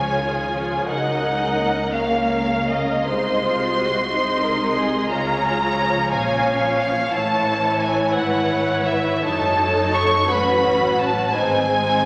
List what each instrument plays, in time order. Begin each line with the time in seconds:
Already playing: double bass section C#2, cello section C#3, viola section F3 F4, violin section G#4 C#5 G#5
0.18 viola section D#3
0.54 viola section F3
0.88 double bass section C#2, cello section C#3, viola section F#3 D#4, violin section A#4 D#5 F#5
1.24 viola section G#3
1.59 viola section A#3
1.94 viola section C#4, violin section A#4 F5
2.69 violin section D#5
3.07 double bass section C2, cello section C3, viola section G#3 D#4, violin section C5 D#5 C6
3.43 viola section F4
3.78 viola section F#4
4.10 viola section G#3 D#4, violin section C5 D#5
4.43 violin section A#4
4.77 violin section G#4
5.10 double bass section C#2, cello section C#3, viola section G#3 F4, violin section G#4 C#5 A#5
5.45 viola section F#3
5.79 viola section F3
6.12 double bass section A#1, cello section A#2, viola section C#4, violin section C#5 F5 G#5
6.80 violin section F5
7.13 double bass section A1, cello section A2, viola section E3 E4, violin section C#5 A5
7.81 violin section G#5
8.14 double bass section G#1, cello section G#2, violin section B4 C#5 F#5
8.87 violin section E5
9.24 double bass section F#1, cello section F#2, viola section F#3 D#4, violin section A4 C#5 A5
9.94 violin section C#6
10.29 double bass section A1, cello section A2, viola section F#3 C#4, violin section F#4 B4 B5
11.00 violin section A5
11.33 double bass section G#1, cello section G#2, viola section G#3 C4, violin section D#4 C5 G#5
11.70 violin section D#4